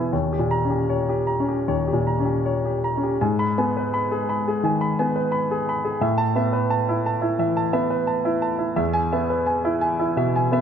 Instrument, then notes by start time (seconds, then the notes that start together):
grand piano
Already playing: E2 B2 B3 E4 B4 G#5
0.13 D#2 C#5
0.33 G4
0.39 A#2
0.51 A#5
0.65 C#4
0.70 G4
0.90 C#5
1.09 G4
1.27 A#5
1.40 C#4
1.48 G4
1.68 D#2 C#5
1.88 G4
1.93 A#2
2.07 A#5
2.20 C#4
2.25 G4
2.46 C#5
2.66 G4
2.84 A#5
2.97 C#4
3.03 G4
3.21 G#2 G#5
3.39 B5
3.58 B3 G#5
3.77 B4
3.94 B5
4.11 G#4
4.29 B5
4.48 G#4
4.63 D#3 G#5
4.81 B5
4.99 B3 G#5
5.16 B4
5.32 B5
5.51 G#4
5.69 B5
5.85 G#4
6.01 A2 E5
6.18 A5
6.36 B3 E5
6.53 B4
6.70 A5
6.89 E4
7.06 A5
7.22 E4
7.39 E3 E5
7.57 A5
7.73 B3 E5
7.90 B4
8.07 A5
8.25 E4
8.42 A5
8.58 E4
8.76 E2 E5
8.93 G#5
9.13 B3 E5
9.30 B4
9.46 G#5
9.65 E4
9.81 G#5
9.99 E4
10.16 B2 E5
10.36 G#5
10.52 B3 E5